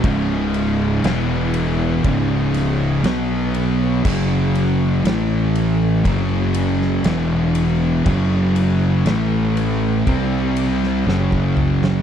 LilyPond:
<<
  \new Staff \with { instrumentName = "String machine" } { \time 4/4 \key fis \dorian \tempo 4 = 60 <cis' gis' dis''>4 <e' b' fis''>4 <cis' gis' dis''>4 <b fis' cis''>4 | <fis cis' gis'>4 <a e' b'>4 <fis cis' gis'>4 <e b fis'>4 | <fis cis' gis'>4 <a e' b'>4 <c' g' d''>4 <fis cis' gis'>4 | }
  \new Staff \with { instrumentName = "Distorted electric guitar" } { \clef bass \time 4/4 \key fis \dorian <cis, gis, cis>4 <e, b, e>4 <cis, gis, cis>4 <b, fis b>4 | <fis, cis fis>4 <a, e a>4 <fis, cis fis>4 <e, b, e>4 | <fis, cis fis>4 <a, e a>4 <c g c'>4 <fis, cis fis>4 | }
  \new Staff \with { instrumentName = "Distorted electric guitar" } { \clef bass \time 4/4 \key fis \dorian <cis, gis, cis>4 <e, b, e>4 <cis, gis, cis>4 <b, fis b>4 | <fis, cis fis>4 <a, e a>4 <fis, cis fis>4 <e, b, e>4 | <fis, cis fis>4 <a, e a>4 <c g c'>4 <fis, cis fis>4 | }
  \new Staff \with { instrumentName = "Distorted electric guitar" } { \clef bass \time 4/4 \key fis \dorian <cis, gis, cis>4 <e, b, e>4 <cis, gis, cis>4 <b, fis b>4 | <fis, cis fis>4 <a, e a>4 <fis, cis fis>4 <e, b, e>4 | <fis, cis fis>4 <a, e a>4 <c g c'>4 <fis, cis fis>4 | }
  \new Staff \with { instrumentName = "Fingered electric bass" } { \clef bass \time 4/4 \key fis \dorian cis,,4 e,,4 cis,,4 b,,4 | fis,,4 a,,4 fis,,4 e,,4 | fis,,4 a,,4 c,4 fis,,4 | }
  \new DrumStaff \with { instrumentName = "Drums" } \drummode { \time 4/4 <bd cymr>8 cymr8 <cymr sn>8 cymr8 <bd cymr>8 <cymr sn>8 <cymr sn>8 cymr8 | <cymc bd>8 cymr8 <cymr sn>8 cymr8 <bd cymr>8 cymr16 sn16 <cymr sn>8 cymr8 | <bd cymr>8 cymr8 <cymr sn>8 cymr8 <bd cymr>8 cymr16 sn16 sn16 bd16 toml16 sn16 | }
>>